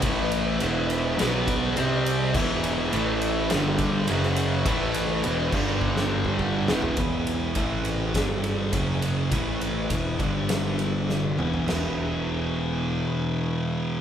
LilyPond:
<<
  \new Staff \with { instrumentName = "Tonewheel organ" } { \time 4/4 \key e \minor \tempo 4 = 103 << { <a b'>4 e''4 <b b'>4 <c' d''>4 | <e' e''>4 a4 <g a'>4 <fis gis'>4 | <a b'>4 e8 <g a'>2 <e e'>8 | <e e'>4 <a b'>4 <g a'>4 <fis gis'>4 |
<a b'>4 e8 <g a'>2 <e e'>8 | <e b e'>1 | } \\ { e'2 fis'4 g'4 | b'4 e'4 d'4 cis'4 | e'4 b8 d'2 b8 | b4 r4 d'4 cis'4 |
e'4 b8 d'2 b8 | r1 | } >> }
  \new Staff \with { instrumentName = "Distorted electric guitar" } { \clef bass \time 4/4 \key e \minor <a, e a>4 <e, b, e>4 <b, fis b>4 <c g c'>4 | <e, b, e>4 <a, e a>4 <g, d g>4 <fis, cis fis>4 | <a, e a>4 <e, b, e>8 <g, d g>2 <e, b, e>8 | <e, b, e>4 <a, e a>4 <g, d g>4 <fis, cis fis>4 |
<a, e a>4 <e, b, e>8 <g, d g>2 <e, b, e>8 | <e, b, e>1 | }
  \new Staff \with { instrumentName = "Distorted electric guitar" } { \clef bass \time 4/4 \key e \minor <a, e a>4 <e, b, e>4 <b, fis b>4 <c g c'>4 | <e, b, e>4 <a, e a>4 <g, d g>4 <fis, cis fis>4 | <a, e a>4 <e, b, e>8 <g, d g>2 <e, b, e>8 | <e, b, e>4 <a, e a>4 <g, d g>4 <fis, cis fis>4 |
<a, e a>4 <e, b, e>8 <g, d g>2 <e, b, e>8 | <e, b, e>1 | }
  \new Staff \with { instrumentName = "Distorted electric guitar" } { \clef bass \time 4/4 \key e \minor <a, e a>4 <e, b, e>4 <b, fis b>4 <c g c'>4 | <e, b, e>4 <a, e a>4 <g, d g>4 <fis, cis fis>4 | <a, e a>4 <e, b, e>8 <g, d g>2 <e, b, e>8 | r1 |
r1 | r1 | }
  \new Staff \with { instrumentName = "Picked electric bass" } { \clef bass \time 4/4 \key e \minor a,,4 e,,4 b,,4 c,4 | e,,4 a,,4 g,,4 fis,,4 | a,,4 e,,8 g,,2 e,,8 | e,,4 a,,4 g,,4 fis,,4 |
a,,4 e,,8 g,,2 e,,8 | e,,1 | }
  \new DrumStaff \with { instrumentName = "Drums" } \drummode { \time 4/4 <bd cymr>8 cymr8 cymr8 cymr8 <cymr sn>8 <bd cymr>8 cymr8 cymr8 | <cymc bd>8 cymr8 cymr8 cymr8 <cymr sn>8 <bd cymr>8 cymr16 sn16 cymr8 | <bd cymr>8 cymr8 cymr8 <cymc bd>8 bd16 sn8 bd16 bd8 sn16 tomfh16 | <bd cymr>8 cymr8 <bd cymr>8 cymr8 <bd cymr sn>8 cymr8 <bd cymr>8 cymr8 |
<bd cymr>8 cymr8 <bd cymr>8 <bd cymr>8 <cymr sn>8 cymr8 sn16 tommh16 toml16 tomfh16 | <cymc sn>4 r4 r4 r4 | }
>>